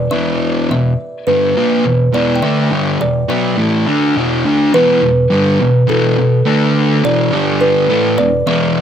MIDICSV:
0, 0, Header, 1, 3, 480
1, 0, Start_track
1, 0, Key_signature, 1, "minor"
1, 0, Tempo, 575264
1, 98, Time_signature, 4, 2, 24, 8
1, 7351, End_track
2, 0, Start_track
2, 0, Title_t, "Kalimba"
2, 0, Program_c, 0, 108
2, 0, Note_on_c, 0, 74, 90
2, 91, Note_on_c, 0, 76, 103
2, 111, Note_off_c, 0, 74, 0
2, 584, Note_off_c, 0, 76, 0
2, 594, Note_on_c, 0, 76, 83
2, 1058, Note_on_c, 0, 71, 79
2, 1083, Note_off_c, 0, 76, 0
2, 1788, Note_on_c, 0, 74, 86
2, 1804, Note_off_c, 0, 71, 0
2, 1966, Note_on_c, 0, 79, 67
2, 1974, Note_off_c, 0, 74, 0
2, 2023, Note_on_c, 0, 76, 98
2, 2024, Note_off_c, 0, 79, 0
2, 2471, Note_off_c, 0, 76, 0
2, 2511, Note_on_c, 0, 74, 83
2, 2732, Note_off_c, 0, 74, 0
2, 2752, Note_on_c, 0, 76, 81
2, 3676, Note_off_c, 0, 76, 0
2, 3957, Note_on_c, 0, 71, 104
2, 4877, Note_off_c, 0, 71, 0
2, 4917, Note_on_c, 0, 69, 82
2, 5597, Note_off_c, 0, 69, 0
2, 5881, Note_on_c, 0, 74, 91
2, 6347, Note_on_c, 0, 71, 79
2, 6366, Note_off_c, 0, 74, 0
2, 6791, Note_off_c, 0, 71, 0
2, 6825, Note_on_c, 0, 74, 104
2, 7047, Note_off_c, 0, 74, 0
2, 7067, Note_on_c, 0, 76, 99
2, 7351, Note_off_c, 0, 76, 0
2, 7351, End_track
3, 0, Start_track
3, 0, Title_t, "Distorted electric guitar"
3, 0, Program_c, 1, 30
3, 101, Note_on_c, 1, 40, 100
3, 106, Note_on_c, 1, 47, 99
3, 111, Note_on_c, 1, 52, 91
3, 572, Note_off_c, 1, 40, 0
3, 577, Note_off_c, 1, 47, 0
3, 579, Note_off_c, 1, 52, 0
3, 582, Note_on_c, 1, 40, 62
3, 585, Note_on_c, 1, 47, 81
3, 774, Note_off_c, 1, 40, 0
3, 775, Note_off_c, 1, 47, 0
3, 1064, Note_on_c, 1, 43, 85
3, 1068, Note_on_c, 1, 50, 91
3, 1072, Note_on_c, 1, 55, 95
3, 1296, Note_off_c, 1, 43, 0
3, 1297, Note_off_c, 1, 50, 0
3, 1301, Note_off_c, 1, 55, 0
3, 1301, Note_on_c, 1, 46, 87
3, 1308, Note_on_c, 1, 53, 89
3, 1312, Note_on_c, 1, 58, 104
3, 1535, Note_off_c, 1, 46, 0
3, 1538, Note_off_c, 1, 53, 0
3, 1541, Note_off_c, 1, 58, 0
3, 1543, Note_on_c, 1, 40, 68
3, 1548, Note_on_c, 1, 47, 76
3, 1736, Note_off_c, 1, 40, 0
3, 1738, Note_off_c, 1, 47, 0
3, 1780, Note_on_c, 1, 40, 90
3, 1786, Note_on_c, 1, 47, 95
3, 1792, Note_on_c, 1, 52, 96
3, 2015, Note_off_c, 1, 40, 0
3, 2018, Note_off_c, 1, 47, 0
3, 2022, Note_off_c, 1, 52, 0
3, 2025, Note_on_c, 1, 50, 97
3, 2029, Note_on_c, 1, 57, 91
3, 2035, Note_on_c, 1, 62, 96
3, 2258, Note_off_c, 1, 50, 0
3, 2260, Note_off_c, 1, 57, 0
3, 2263, Note_off_c, 1, 62, 0
3, 2267, Note_on_c, 1, 43, 84
3, 2270, Note_on_c, 1, 50, 89
3, 2275, Note_on_c, 1, 55, 99
3, 2497, Note_off_c, 1, 43, 0
3, 2499, Note_off_c, 1, 50, 0
3, 2500, Note_on_c, 1, 40, 60
3, 2502, Note_on_c, 1, 47, 67
3, 2503, Note_off_c, 1, 55, 0
3, 2695, Note_off_c, 1, 40, 0
3, 2696, Note_off_c, 1, 47, 0
3, 2741, Note_on_c, 1, 47, 89
3, 2749, Note_on_c, 1, 54, 98
3, 2752, Note_on_c, 1, 59, 100
3, 2974, Note_off_c, 1, 47, 0
3, 2977, Note_on_c, 1, 45, 84
3, 2981, Note_off_c, 1, 54, 0
3, 2982, Note_off_c, 1, 59, 0
3, 2985, Note_on_c, 1, 52, 91
3, 2988, Note_on_c, 1, 57, 106
3, 3215, Note_off_c, 1, 45, 0
3, 3219, Note_off_c, 1, 52, 0
3, 3220, Note_off_c, 1, 57, 0
3, 3228, Note_on_c, 1, 50, 90
3, 3232, Note_on_c, 1, 57, 94
3, 3239, Note_on_c, 1, 62, 94
3, 3460, Note_off_c, 1, 50, 0
3, 3462, Note_off_c, 1, 57, 0
3, 3466, Note_off_c, 1, 62, 0
3, 3467, Note_on_c, 1, 40, 94
3, 3472, Note_on_c, 1, 47, 98
3, 3479, Note_on_c, 1, 52, 103
3, 3700, Note_off_c, 1, 40, 0
3, 3702, Note_off_c, 1, 47, 0
3, 3706, Note_off_c, 1, 52, 0
3, 3708, Note_on_c, 1, 50, 88
3, 3713, Note_on_c, 1, 57, 86
3, 3717, Note_on_c, 1, 62, 108
3, 3940, Note_off_c, 1, 50, 0
3, 3942, Note_off_c, 1, 57, 0
3, 3943, Note_on_c, 1, 40, 93
3, 3945, Note_off_c, 1, 62, 0
3, 3949, Note_on_c, 1, 47, 96
3, 3956, Note_on_c, 1, 52, 109
3, 4175, Note_off_c, 1, 40, 0
3, 4179, Note_off_c, 1, 47, 0
3, 4184, Note_off_c, 1, 52, 0
3, 4185, Note_on_c, 1, 40, 70
3, 4189, Note_on_c, 1, 47, 73
3, 4378, Note_off_c, 1, 40, 0
3, 4379, Note_off_c, 1, 47, 0
3, 4423, Note_on_c, 1, 43, 79
3, 4430, Note_on_c, 1, 50, 103
3, 4436, Note_on_c, 1, 55, 104
3, 4657, Note_off_c, 1, 43, 0
3, 4661, Note_off_c, 1, 50, 0
3, 4664, Note_off_c, 1, 55, 0
3, 4673, Note_on_c, 1, 40, 64
3, 4676, Note_on_c, 1, 47, 74
3, 4861, Note_off_c, 1, 40, 0
3, 4863, Note_off_c, 1, 47, 0
3, 4898, Note_on_c, 1, 40, 91
3, 4907, Note_on_c, 1, 47, 104
3, 4907, Note_on_c, 1, 52, 108
3, 5134, Note_off_c, 1, 40, 0
3, 5139, Note_off_c, 1, 47, 0
3, 5139, Note_off_c, 1, 52, 0
3, 5146, Note_on_c, 1, 40, 67
3, 5150, Note_on_c, 1, 47, 76
3, 5338, Note_off_c, 1, 40, 0
3, 5339, Note_off_c, 1, 47, 0
3, 5387, Note_on_c, 1, 50, 98
3, 5388, Note_on_c, 1, 57, 97
3, 5393, Note_on_c, 1, 62, 106
3, 5858, Note_off_c, 1, 50, 0
3, 5858, Note_off_c, 1, 57, 0
3, 5861, Note_off_c, 1, 62, 0
3, 5864, Note_on_c, 1, 40, 91
3, 5869, Note_on_c, 1, 47, 103
3, 5874, Note_on_c, 1, 52, 111
3, 6096, Note_off_c, 1, 40, 0
3, 6099, Note_off_c, 1, 47, 0
3, 6101, Note_off_c, 1, 52, 0
3, 6102, Note_on_c, 1, 43, 86
3, 6106, Note_on_c, 1, 50, 106
3, 6112, Note_on_c, 1, 55, 96
3, 6575, Note_off_c, 1, 43, 0
3, 6577, Note_off_c, 1, 50, 0
3, 6580, Note_off_c, 1, 55, 0
3, 6584, Note_on_c, 1, 45, 97
3, 6588, Note_on_c, 1, 52, 105
3, 6593, Note_on_c, 1, 57, 104
3, 6816, Note_off_c, 1, 45, 0
3, 6818, Note_off_c, 1, 52, 0
3, 6820, Note_off_c, 1, 57, 0
3, 6822, Note_on_c, 1, 40, 65
3, 6828, Note_on_c, 1, 47, 69
3, 7014, Note_off_c, 1, 40, 0
3, 7017, Note_off_c, 1, 47, 0
3, 7066, Note_on_c, 1, 40, 104
3, 7070, Note_on_c, 1, 47, 100
3, 7077, Note_on_c, 1, 52, 109
3, 7351, Note_off_c, 1, 40, 0
3, 7351, Note_off_c, 1, 47, 0
3, 7351, Note_off_c, 1, 52, 0
3, 7351, End_track
0, 0, End_of_file